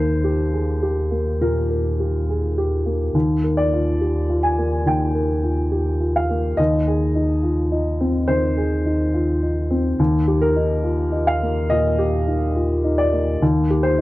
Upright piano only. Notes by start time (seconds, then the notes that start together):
Already playing: D#2 A#4 C5
0.24 G4
0.53 G#4
0.83 G4
1.11 A#3
1.41 A#2 A#4
1.70 A#4
2.00 G4
2.29 G#4
2.58 G4
2.86 A#3
3.14 D#2
3.44 A#4
3.57 D5
3.73 F4
4.01 G4
4.30 F4
4.43 G#5
4.58 A#3
4.86 D#2 G5
5.15 A#4
5.43 F4
5.72 G4
6.00 F4
6.16 F5
6.30 A#3
6.57 D#2 D#5
6.87 G#4
7.15 D#4
7.43 F4
7.72 D#4
8.01 C4
8.28 D#3 C5
8.57 G#4
8.86 D#4
9.14 F4
9.43 D#4
9.71 C4
9.99 D#2
10.28 G4
10.41 A#4
10.56 D#4
10.84 F4
11.12 D#4
11.27 F5
11.42 A#3
11.70 A#2 D#5
11.99 G4
12.27 D#4
12.55 F4
12.84 D#4
12.98 D5
13.13 A#3
13.42 D#2
13.70 G4
13.83 C5